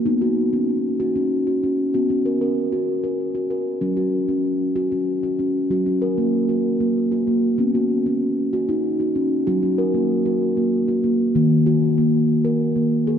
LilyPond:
<<
  \new Staff \with { instrumentName = "Steel tongue drum" } { \time 6/8 \key fis \major \tempo 4. = 64 dis'16 fis'8 cis'8 r16 fis'16 cis'8 fis'16 cis'8 | fis'16 cis'16 ais'16 ais'8 fis'8 ais'8 fis'16 ais'8 | cis'16 fis'8 cis'8 r16 fis'16 cis'8 fis'16 cis'8 | fis'16 cis'16 ais'16 ais8 fis'8 ais8 fis'16 ais8 |
cis'16 fis'8 cis'8 r16 fis'16 dis'8 fis'16 cis'8 | fis'16 cis'16 ais'16 ais8 fis'8 ais8 fis'16 ais8 | ais8 fis'8 ais8 r16 ais'8 ais8 gis'16 | }
  \new Staff \with { instrumentName = "Steel tongue drum" } { \clef bass \time 6/8 \key fis \major b2. | b2. | fis2. | fis2. |
b2. | fis2. | dis2. | }
>>